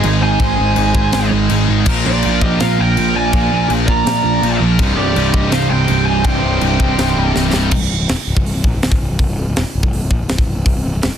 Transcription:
Already playing: G#2 D#3 G#3
0.01 G#1 G#2 D#4 G#4, china
0.05 D#3 G#3 D#4
0.10 G#4
0.16 D#4 G#4
0.21 G#2 D#3 G#3 D#4 G#4 C5 G#5
0.30 D#4 G#4
0.40 G#1 G#2 D#3 G#3 D#4 G#4, kick, china
0.47 D#4 G#4
0.56 G#2 D#3 G#3 D#4 G#4
0.60 G#1 D#4
0.65 G#4
0.71 D#4 G#4
0.76 G#1 G#2 D#3 G#3 D#4 G#4, china
0.86 D#4 G#4
0.93 G#1 G#2 D#3 G#3 D#4 G#4, kick
1.01 D#4 G#4
1.09 D#4 G#4, china
1.13 G#1 G#2 D#3 G#3, snare
1.17 D#4 G#4
1.25 D#4 G#4
1.30 G#1 G#2 D#3 G#3 D#4 G#4
1.39 D#4 G#4
1.48 G#1 G#2 D#3 G#3 D#4 G#4, china
1.56 D#4 G#4
1.63 D#4 G#4
1.67 G#1 G#2 D#3 G#3 D#4 G#4
1.79 D#4 G#4
1.86 A#1 A#2 F3 A#3 F4 A#4, kick, china, crash
1.94 F4 A#4
2.02 A#2 F4 A#4
2.06 A#1 F3 A#3 F4 D5
2.11 A#4
2.17 F4 A#4
2.23 A#1 A#2 F3 A#3 F4 A#4, china
2.32 F4 A#4
2.40 A#1 A#2 F3 A#3 F4 G4 A#4 D#5, kick
2.47 F4 A#4
2.56 F4 A#4
2.60 A#1 A#2 F3 A#3 F4 A#4 F5, snare, china
2.64 A#4
2.71 F4 A#4
2.77 A#1 A#2 F3 A#3 F4 A#4 G5
2.86 F4 A#4
2.94 A#2 F3 A#3 F4 A#4, china
2.99 A#1 F4 A#4
3.10 F4 A#4
3.15 A#2 F3 A#3 F4 A#4 D5 G#5
3.25 F4 A#4
3.33 A#1 A#2 F3 A#3 F4 A#4, kick, china
3.41 F4 A#4
3.49 A#1 A#2 F3 A#3 F4 A#4
3.57 F4 A#4
3.64 F4 A#4
3.69 A#1 A#2 F3 A#3 F4 A#4, china
3.80 F4 A#4
3.87 A#1 A#2 F3 A#3 F4 A#4 D5 A#5, kick
3.95 F4 A#4
4.03 A#1 A#2 F3 F4 A#4, china
4.07 A#3 F4, snare
4.11 A#4
4.18 F4 A#4
4.24 A#1 A#2 F3 A#3 F4 A#4
4.34 F4 A#4
4.41 A#1 A#2 F3 A#3 F4 A#4, china
4.48 F4 A#4
4.57 A#1 F4 A#4
4.61 A#2 F3 A#3 F4
4.65 A#4
4.72 F4 A#4
4.79 C1 C2 G2 C3 G3 D#4, kick, china
4.88 G3 D#4
4.94 C1 C2 G2 C3 G3 D#4 G4
4.98 D5
5.03 G3 D#4
5.10 G3 D#4
5.15 C1 C2 G2 C3 G3 D#4, china
5.25 G3 D#4
5.33 C1 C2 G2 C3 G3 D#4 G4 D#5, kick
5.41 G3 D#4
5.48 C1 C2 G2 C3 G3 D#4 C5 F5, china
5.52 G3 D#4, snare
5.63 G3 D#4
5.68 C1 C2 G2 C3 G3 C5 G5
5.72 D#4
5.78 G3 D#4
5.85 C1 C2 G2 G3 D#4, china
5.89 C3
5.93 G3 D#4
6.01 G3 D#4
6.06 C2 G2 C3 G3 C5 G#5
6.10 D#4
6.17 G3 D#4
6.23 C1 C2 G2 C3 G3 D#4 C5 G5, kick, china
6.34 G3 D#4
6.41 C1 C2 G2 C3 G3 D#4
6.48 G3 D#4
6.56 G3 D#4
6.61 C1 C2 G2 C3 G3 D#4, china
6.71 G3 D#4
6.79 C1 C2 G2 C3 G3 D#4, kick
6.87 G3 D#4
6.95 C1 C2 G2 C3 G3 D#4, china
6.99 G3 D#4, snare
7.10 G3 D#4
7.16 C1 C2 G2 C3 G3 D#4
7.25 G3 D#4
7.33 C1 C2 G2 C3 G3 D#4, snare
7.41 G3 D#4
7.49 C2 G3 D#4
7.53 C1 G2 C3 G3, snare
7.57 D#4
7.63 G3 D#4
7.71 C1, kick, crash
7.82 C1
7.91 C1
8.00 C1
8.09 D#1, snare, open hi-hat
8.18 muted picked electric bass stroke
8.27 C1
8.37 C1, kick
8.46 C1, open hi-hat
8.54 C1
8.64 A#1, kick
8.74 C1
8.83 C1, snare, open hi-hat
8.92 D1, kick
9.00 C1
9.10 C1
9.19 C1, kick, open hi-hat
9.28 C1
9.38 C1
9.48 C1
9.56 D#1, snare, open hi-hat
9.67 muted picked electric bass stroke
9.75 C1
9.83 C1, kick
9.93 C1, open hi-hat
10.02 C1
10.11 A#1, kick
10.20 C1
10.29 C1, snare, open hi-hat
10.38 D1, kick
10.48 C1
10.57 C1
10.66 C1, kick, open hi-hat
10.76 C1
10.85 C1
10.94 C1
11.03 D#1, snare, open hi-hat
11.12 muted picked electric bass stroke

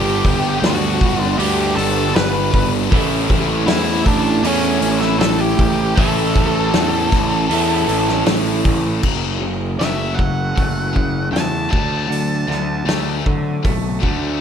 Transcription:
Already playing: G1 G2 D3 G3 B3 D4 G4 G5
0.25 G1, kick, open hi-hat
0.62 D2 F#4 F#5, snare, open hi-hat
1.01 G1, kick, open hi-hat
1.22 E5
1.39 D2 G2 D3 G3 B3 D4 G4 G5, open hi-hat
1.76 G1 A4 A5, open hi-hat
2.15 G1 B4 B5, snare, open hi-hat
2.53 G1, kick, open hi-hat
2.89 A1 A2 E3 A3 C#4 E4, kick, open hi-hat
2.93 E3 A3
3.29 A1, kick, open hi-hat
3.67 E2 E4 E5, snare, open hi-hat
4.05 A1 D4 D5, kick, open hi-hat
4.43 E2 A2 E3 A3 C#4, open hi-hat
4.47 C#4 E4 C#5
4.81 A1, open hi-hat
5.00 E4 E5, snare
5.18 A1 A4 A5, snare, open hi-hat
5.40 G4 G5
5.58 A1, kick, open hi-hat
5.96 A1 A2 E3 A3 C#4 E4 A4 A5, kick, open hi-hat
6.36 A1, kick, open hi-hat
6.73 E2, snare, open hi-hat
7.11 A1, kick, snare, open hi-hat
7.44 G5
7.50 E2 A2 E3 A3 C#4 E4, open hi-hat
7.88 A1, open hi-hat
8.08 snare
8.26 A1, snare, open hi-hat
8.64 A1, kick, open hi-hat
9.03 F#1 F#2 C#3 F#3, kick, crash
9.40 F#1 F#2 C#3
9.79 F#1 F#2 C#3 F#3 A3 E5, snare, open hi-hat
10.15 F#2 C#3 F#3 F#5
10.19 kick
10.55 F#1 F#2 C#3 A3, kick, open hi-hat
10.93 F#2 C#3, kick
11.31 E2 F#2 C#3 A3 A5
11.36 snare, open hi-hat
11.69 D2 D3 F#3 A3 A5
11.73 kick
12.08 D2 D3 F#3, open hi-hat
12.47 D2 D3 F#3, snare
12.85 D2 D3 F#3 A3, snare, open hi-hat
13.23 D3 F#3, kick
13.63 B1 D3 F#3 A3, kick, open hi-hat
14.00 D2 D3 F#3 A3, kick

